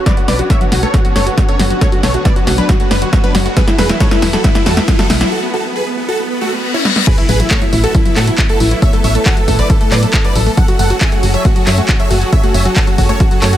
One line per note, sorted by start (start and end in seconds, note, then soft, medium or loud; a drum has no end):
0.00 3.53 C#4 medium
0.06 3.53 D3 medium
0.06 0.14 F#3 medium
0.06 3.53 B3 medium
0.06 0.15 B4 medium
0.06 0.15 D5 loud
0.06 kick loud
0.06 snare medium
0.06 closed hi-hat medium
0.06 riser medium
0.17 0.24 A3 medium
0.17 0.26 F#4 medium
0.17 closed hi-hat medium
0.28 0.42 B1 loud
0.28 0.35 F#3 medium
0.28 0.37 B4 medium
0.28 0.37 D5 medium
0.28 snare medium
0.28 open hi-hat loud
0.39 0.46 F#3 medium
0.39 0.48 F#4 medium
0.39 closed hi-hat soft
0.50 0.57 A3 medium
0.50 0.59 C#5 medium
0.50 0.59 E5 medium
0.50 0.59 E5 loud
0.50 kick loud
0.50 snare medium
0.50 closed hi-hat medium
0.61 0.68 F#3 medium
0.61 0.70 F#4 medium
0.61 closed hi-hat medium
0.72 0.86 B1 loud
0.72 0.79 F#3 medium
0.72 0.81 F#4 medium
0.72 snare medium
0.72 open hi-hat loud
0.83 0.90 A3 medium
0.83 0.92 A4 medium
0.83 0.92 C#5 loud
0.83 0.92 C#5 medium
0.83 closed hi-hat soft
0.94 1.01 F#3 medium
0.94 1.03 F#4 medium
0.94 kick loud
0.94 snare medium
0.94 closed hi-hat medium
1.05 1.12 F#3 medium
1.05 1.14 F#4 medium
1.05 closed hi-hat soft
1.16 1.30 F#1 medium
1.16 1.23 A3 medium
1.16 1.25 A4 medium
1.16 1.25 C#5 medium
1.16 snare medium
1.16 open hi-hat loud
1.27 1.34 F#3 medium
1.27 1.36 F#4 medium
1.27 closed hi-hat medium
1.37 1.45 F#3 medium
1.37 1.47 F#4 medium
1.37 kick loud
1.37 snare medium
1.37 closed hi-hat medium
1.48 1.56 A3 medium
1.48 1.58 A4 medium
1.48 1.58 C#5 medium
1.48 closed hi-hat soft
1.59 1.73 F#1 medium
1.59 1.67 F#3 medium
1.59 1.69 F#4 medium
1.59 snare medium
1.59 open hi-hat loud
1.70 1.78 F#3 medium
1.70 1.80 F#4 medium
1.70 closed hi-hat soft
1.81 1.89 A3 medium
1.81 1.91 A4 medium
1.81 1.91 C#5 loud
1.81 kick loud
1.81 snare medium
1.81 closed hi-hat medium
1.92 2.00 F#3 medium
1.92 2.02 F#4 medium
1.92 closed hi-hat medium
2.03 2.17 B1 medium
2.03 2.11 F#3 medium
2.03 2.13 A4 medium
2.03 2.13 C#5 medium
2.03 snare medium
2.03 open hi-hat loud
2.14 2.22 A3 medium
2.14 2.24 F#4 medium
2.14 closed hi-hat medium
2.25 2.33 F#3 medium
2.25 2.34 B4 medium
2.25 2.34 D5 medium
2.25 kick loud
2.25 snare medium
2.25 closed hi-hat medium
2.36 2.43 F#3 medium
2.36 2.45 F#4 medium
2.36 closed hi-hat medium
2.47 2.61 B1 loud
2.47 2.54 A3 medium
2.47 2.56 F#4 medium
2.47 snare medium
2.47 open hi-hat loud
2.58 2.65 F#3 medium
2.58 2.67 D4 medium
2.58 2.67 B4 medium
2.58 2.67 B4 loud
2.58 closed hi-hat medium
2.69 2.76 F#3 medium
2.69 2.78 F#4 medium
2.69 kick loud
2.69 snare medium
2.69 closed hi-hat medium
2.80 2.87 A3 medium
2.80 2.89 F#4 medium
2.80 closed hi-hat medium
2.91 3.05 F#1 medium
2.91 2.98 F#3 medium
2.91 3.00 D4 medium
2.91 3.00 B4 loud
2.91 snare medium
2.91 open hi-hat loud
3.02 3.09 F#3 medium
3.02 3.11 F#4 medium
3.02 closed hi-hat medium
3.13 3.20 A3 medium
3.13 3.22 F#4 medium
3.13 kick loud
3.13 snare medium
3.13 closed hi-hat medium
3.24 3.31 F#3 medium
3.24 3.33 D4 medium
3.24 3.33 B4 medium
3.24 3.33 B4 loud
3.24 closed hi-hat medium
3.35 3.49 F#1 medium
3.35 3.42 F#3 medium
3.35 3.44 F#4 medium
3.35 snare medium
3.35 open hi-hat loud
3.46 3.53 A3 medium
3.46 3.55 F#4 medium
3.46 closed hi-hat soft
3.57 5.30 E3 medium
3.57 3.64 F#3 medium
3.57 5.30 E4 medium
3.57 3.66 G#4 medium
3.57 5.30 A4 medium
3.57 3.66 B4 loud
3.57 5.30 B4 medium
3.57 kick loud
3.57 snare medium
3.57 closed hi-hat loud
3.68 3.75 F#3 medium
3.68 3.77 E4 medium
3.68 snare medium
3.68 closed hi-hat medium
3.78 3.93 E1 loud
3.78 3.86 A3 medium
3.78 3.88 G#4 medium
3.78 3.88 B4 medium
3.78 snare loud
3.78 open hi-hat loud
3.89 3.97 F#3 medium
3.89 3.99 E4 medium
3.89 snare medium
3.89 closed hi-hat medium
4.00 4.08 F#3 medium
4.00 4.10 A4 medium
4.00 4.10 C#5 medium
4.00 4.10 C#5 loud
4.00 kick loud
4.00 snare loud
4.00 closed hi-hat loud
4.11 4.19 A3 medium
4.11 4.21 E4 medium
4.11 snare medium
4.11 closed hi-hat medium
4.22 4.36 E1 loud
4.22 4.30 F#3 medium
4.22 4.32 E4 medium
4.22 snare loud
4.22 open hi-hat loud
4.33 4.41 F#3 medium
4.33 4.43 F#4 medium
4.33 4.43 A4 loud
4.33 4.43 A4 medium
4.33 snare medium
4.33 closed hi-hat medium
4.44 4.52 A3 medium
4.44 4.53 E4 medium
4.44 4.54 E4 medium
4.44 kick loud
4.44 snare loud
4.44 closed hi-hat loud
4.55 4.63 F#3 medium
4.55 4.64 E4 medium
4.55 snare medium
4.55 closed hi-hat medium
4.66 4.80 E2 medium
4.66 4.73 F#3 medium
4.66 4.75 F#4 medium
4.66 4.75 A4 medium
4.66 snare loud
4.66 open hi-hat loud
4.77 4.84 A3 medium
4.77 4.86 E4 medium
4.77 snare medium
4.77 closed hi-hat medium
4.88 4.95 F#3 medium
4.88 4.97 E4 medium
4.88 kick loud
4.88 snare loud
4.88 closed hi-hat loud
4.99 5.06 F#3 medium
4.99 5.08 F#4 medium
4.99 5.08 A4 medium
4.99 5.08 A4 loud
4.99 snare medium
4.99 closed hi-hat medium
5.10 5.24 B1 medium
5.10 5.17 A3 medium
5.10 5.19 E4 medium
5.10 snare loud
5.10 open hi-hat loud
5.21 5.28 F#3 medium
5.21 5.30 E4 medium
5.21 snare medium
5.21 closed hi-hat medium
5.32 5.41 F#4 medium
5.32 5.41 A4 loud
5.43 5.52 B3 medium
5.54 5.63 F#4 medium
5.54 5.63 A4 medium
5.65 5.74 B3 medium
5.76 5.85 G#4 medium
5.76 5.85 B4 loud
5.87 5.96 B3 medium
5.98 6.07 B3 medium
6.08 6.18 F#4 medium
6.08 6.18 A4 loud
6.19 6.29 B3 medium
6.19 reverse cymbal medium
6.30 6.40 B3 medium
6.41 6.51 A3 medium
6.41 6.51 F#4 medium
6.52 6.62 B3 medium
6.63 6.72 B3 medium
6.74 6.83 C#4 medium
6.74 6.83 E4 loud
6.85 6.94 B3 medium
6.85 snare medium
6.96 7.05 B3 medium
6.96 snare medium
7.07 7.14 F#3 medium
7.07 10.54 A3 medium
7.07 10.54 B3 medium
7.07 10.54 E4 medium
7.07 7.16 G#4 medium
7.07 7.16 B4 loud
7.07 kick loud
7.07 closed hi-hat medium
7.07 crash loud
7.07 impact medium
7.18 7.25 A3 medium
7.18 7.27 E4 medium
7.18 closed hi-hat medium
7.29 7.43 A1 loud
7.29 7.36 F#3 medium
7.29 7.38 G#4 medium
7.29 7.38 B4 medium
7.29 open hi-hat loud
7.40 7.47 F#3 medium
7.40 7.49 E4 medium
7.40 closed hi-hat medium
7.51 7.58 A3 medium
7.51 7.60 A4 medium
7.51 7.60 C#5 loud
7.51 7.60 C#5 medium
7.51 kick loud
7.51 clap loud
7.51 closed hi-hat medium
7.62 7.69 F#3 medium
7.62 7.71 E4 medium
7.62 closed hi-hat medium
7.73 7.87 A1 loud
7.73 7.80 F#3 medium
7.73 7.82 E4 medium
7.73 open hi-hat loud
7.84 7.91 A3 medium
7.84 7.93 F#4 medium
7.84 7.93 A4 medium
7.84 7.93 A4 loud
7.84 closed hi-hat medium
7.95 8.02 F#3 medium
7.95 8.04 E4 medium
7.95 kick loud
7.95 closed hi-hat medium
8.06 8.13 F#3 medium
8.06 8.15 E4 medium
8.06 closed hi-hat medium
8.16 8.30 A2 medium
8.16 8.24 A3 medium
8.16 8.26 F#4 medium
8.16 8.26 A4 loud
8.16 clap medium
8.16 open hi-hat loud
8.27 8.35 F#3 medium
8.27 8.37 E4 medium
8.27 closed hi-hat medium
8.38 8.46 F#3 medium
8.38 8.48 E4 medium
8.38 kick loud
8.38 clap loud
8.38 closed hi-hat medium
8.49 8.57 A3 medium
8.49 8.59 F#4 medium
8.49 8.59 A4 loud
8.49 closed hi-hat medium
8.60 8.74 A1 loud
8.60 8.68 F#3 medium
8.60 8.70 E4 medium
8.60 open hi-hat loud
8.71 8.79 F#3 medium
8.71 8.81 E4 medium
8.71 closed hi-hat medium
8.82 8.90 A3 medium
8.82 8.92 C#5 medium
8.82 8.91 E5 loud
8.82 8.92 E5 loud
8.82 kick loud
8.82 closed hi-hat medium
8.93 9.00 F#3 medium
8.93 9.02 A4 medium
8.93 closed hi-hat medium
9.04 9.18 A1 loud
9.04 9.11 F#3 medium
9.04 9.13 C#5 medium
9.04 9.13 E5 medium
9.04 open hi-hat loud
9.15 9.22 A3 medium
9.15 9.24 A4 medium
9.15 closed hi-hat medium
9.26 9.33 F#3 medium
9.26 9.35 A4 medium
9.26 9.35 F#5 loud
9.26 9.35 F#5 medium
9.26 kick loud
9.26 clap loud
9.26 closed hi-hat medium
9.37 9.44 F#3 medium
9.37 9.46 A4 medium
9.37 closed hi-hat medium
9.48 9.62 A1 loud
9.48 9.55 A3 medium
9.48 9.57 A4 medium
9.48 kick medium
9.48 open hi-hat loud
9.59 9.66 F#3 medium
9.59 9.68 B4 medium
9.59 9.68 D5 medium
9.59 9.68 D5 loud
9.59 closed hi-hat medium
9.70 9.77 F#3 medium
9.70 9.79 A4 medium
9.70 kick loud
9.70 closed hi-hat medium
9.81 9.88 A3 medium
9.81 9.90 A4 medium
9.81 closed hi-hat medium
9.92 10.06 A2 medium
9.92 9.99 F#3 medium
9.92 10.01 B4 medium
9.92 10.01 D5 loud
9.92 clap medium
9.92 open hi-hat loud
10.03 10.10 F#3 medium
10.03 10.12 A4 medium
10.03 closed hi-hat medium
10.13 10.21 A3 medium
10.13 10.23 A4 medium
10.13 kick loud
10.13 clap loud
10.13 closed hi-hat medium
10.24 10.32 F#3 medium
10.24 10.34 B4 medium
10.24 10.34 D5 loud
10.24 10.34 D5 medium
10.24 closed hi-hat medium
10.35 10.49 A1 loud
10.35 10.43 F#3 medium
10.35 10.45 A4 medium
10.35 open hi-hat loud
10.46 10.54 A3 medium
10.46 10.56 A4 medium
10.46 open hi-hat medium
10.57 10.65 F#3 medium
10.57 13.57 F#3 medium
10.57 13.57 C#4 medium
10.57 13.57 G#4 medium
10.57 10.67 A4 medium
10.57 13.57 A4 medium
10.57 10.67 F#5 loud
10.57 kick loud
10.57 closed hi-hat medium
10.68 10.76 F#3 medium
10.68 10.78 F#4 medium
10.68 closed hi-hat medium
10.79 10.93 F#1 loud
10.79 10.87 A3 medium
10.79 10.89 A4 medium
10.79 10.89 F#5 medium
10.79 open hi-hat loud
10.90 10.98 F#3 medium
10.90 10.99 F#4 medium
10.90 closed hi-hat medium
11.01 11.09 F#3 medium
11.01 11.10 E5 medium
11.01 11.10 G#5 loud
11.01 11.10 G#5 medium
11.01 kick loud
11.01 clap loud
11.01 closed hi-hat medium
11.12 11.19 A3 medium
11.12 11.21 F#4 medium
11.12 closed hi-hat medium
11.23 11.37 F#1 loud
11.23 11.30 F#3 medium
11.23 11.32 F#4 medium
11.23 open hi-hat loud
11.34 11.41 F#3 medium
11.34 11.43 C#5 medium
11.34 11.43 E5 medium
11.34 11.43 E5 loud
11.34 closed hi-hat medium
11.45 11.52 A3 medium
11.45 11.54 F#4 medium
11.45 kick loud
11.45 closed hi-hat medium
11.56 11.63 F#3 medium
11.56 11.65 F#4 medium
11.56 closed hi-hat soft
11.67 11.81 F#2 medium
11.67 11.74 F#3 medium
11.67 11.76 C#5 medium
11.67 11.76 E5 medium
11.67 11.76 E5 loud
11.67 clap medium
11.67 open hi-hat loud
11.78 11.85 A3 medium
11.78 11.87 F#4 medium
11.78 closed hi-hat medium
11.89 11.96 F#3 medium
11.89 11.98 F#4 medium
11.89 kick loud
11.89 clap loud
11.89 closed hi-hat medium
12.00 12.07 F#3 medium
12.00 12.09 C#5 medium
12.00 12.09 E5 loud
12.00 closed hi-hat medium
12.11 12.25 F#1 loud
12.11 12.18 A3 medium
12.11 12.20 F#4 medium
12.11 open hi-hat loud
12.22 12.29 F#3 medium
12.22 12.31 F#4 medium
12.22 closed hi-hat medium
12.32 12.40 F#3 medium
12.32 12.42 C#5 medium
12.32 12.42 E5 loud
12.32 kick loud
12.32 closed hi-hat medium
12.43 12.51 A3 medium
12.43 12.53 F#4 medium
12.43 closed hi-hat soft
12.54 12.68 F#1 loud
12.54 12.62 F#3 medium
12.54 12.64 C#5 medium
12.54 12.64 E5 medium
12.54 open hi-hat loud
12.65 12.73 F#3 medium
12.65 12.75 F#4 medium
12.65 closed hi-hat medium
12.76 12.84 A3 medium
12.76 12.86 A4 medium
12.76 12.86 F#5 medium
12.76 kick loud
12.76 clap loud
12.76 closed hi-hat medium
12.87 12.95 F#3 medium
12.87 12.97 F#4 medium
12.87 closed hi-hat medium
12.98 13.12 F#1 loud
12.98 13.06 F#3 medium
12.98 13.08 F#4 medium
12.98 kick medium
12.98 open hi-hat loud
13.09 13.17 A3 medium
13.09 13.18 A4 medium
13.09 13.18 C#5 loud
13.09 closed hi-hat medium
13.20 13.27 F#3 medium
13.20 13.29 F#4 medium
13.20 kick loud
13.20 closed hi-hat medium
13.31 13.38 F#3 medium
13.31 13.40 F#4 medium
13.31 closed hi-hat soft
13.42 13.56 F#2 medium
13.42 13.49 A3 medium
13.42 13.51 A4 medium
13.42 13.51 C#5 medium
13.42 13.51 C#5 loud
13.42 clap medium
13.42 open hi-hat loud
13.53 13.57 F#3 medium
13.53 13.57 F#4 medium
13.53 closed hi-hat medium